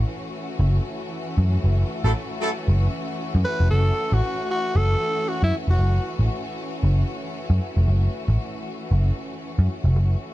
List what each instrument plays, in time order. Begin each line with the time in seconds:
Already playing: string section E3 A3 C#4 F#4
0.59 picked electric bass F#1
1.38 picked electric bass F#2
1.64 picked electric bass F#1
2.04 picked electric bass A1, horn section F#3 A3 E4 A4
2.41 horn section F#3 A3 E4 A4
2.68 picked electric bass F#1
3.35 picked electric bass F#2
3.44 tenor saxophone B4
3.60 picked electric bass F1
3.71 picked electric bass F#1, tenor saxophone A4
4.12 picked electric bass A1, tenor saxophone F#4
4.50 tenor saxophone F#4
4.76 picked electric bass F#1, tenor saxophone A4
5.28 tenor saxophone F#4
5.43 picked electric bass F#2, tenor saxophone E4
5.68 picked electric bass F1, tenor saxophone F#4
5.79 picked electric bass F#1
6.19 picked electric bass A1
6.83 picked electric bass F#1
7.50 picked electric bass F#2
7.77 picked electric bass F1
7.88 picked electric bass F#1
8.28 picked electric bass A1
8.91 picked electric bass F#1
9.59 picked electric bass F#2
9.84 picked electric bass F1
9.96 picked electric bass F#1